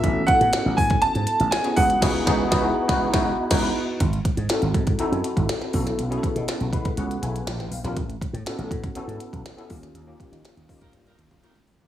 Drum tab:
CC |----------------|x-----------x---|----------------|----------------|
HH |x-xxx-oxxxxxxxox|----------------|xxxxxxxxxxxxx-ox|xxxxxxxxxxxxx-ox|
SD |----o-------oo--|o-o-o--o-o--o---|----o-------oo-o|----o-------oo-o|
T1 |----------------|----------------|----------------|----------------|
T2 |----------------|----------------|----------------|----------------|
FT |----------------|----------------|----------------|----------------|
BD |o-o---oo------o-|o-o-o--o-o--o---|o-o---oo---o--o-|--o---oo--------|

CC |----------------|----------------|
HH |xxxxxxxxxxxxx-ox|x-xxxxoxxxxxxxox|
SD |----o-------oo-o|---oo-----------|
T1 |----------------|------------o---|
T2 |----------------|--------------o-|
FT |----------------|---------------o|
BD |o-o---oo---o--o-|--o---oo---o----|